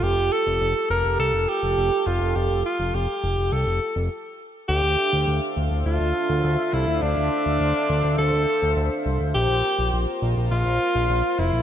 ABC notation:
X:1
M:4/4
L:1/16
Q:1/4=103
K:Dm
V:1 name="Analog synth pad"
[FGA]16- | [FGA]12 z4 | [DAcef]16- | [DAcef]16 |
[FB]16 |]
V:2 name="Tenor saxophone"
G2 A4 B2 A2 G4 F2 | G2 F2 G4 A4 z4 | G6 z2 F6 E2 | D8 A6 z2 |
G6 z2 F6 E2 |]
V:3 name="Analog synth bass" clef=bass
F,,, F,,, z F,,, F,,, z F,,, F,,, C,, F,,, z F,,, F,,, z F,,, F,,, | F,,, F,,, z F,,, F,,, z F,,, F,,, C,, F,,, z F,,, z4 | D,, D,, z D,, D,, z D,, D,, D,, D,, z D,, D,, z C,, D,, | D,, D,, z D,, D,, z D,, D,, D,, D,, z D,, D,, z C,, D,, |
B,,, B,,, z B,,, B,,, z B,,, B,,, B,,, B,,, z B,,, B,,, z F,,, B,,, |]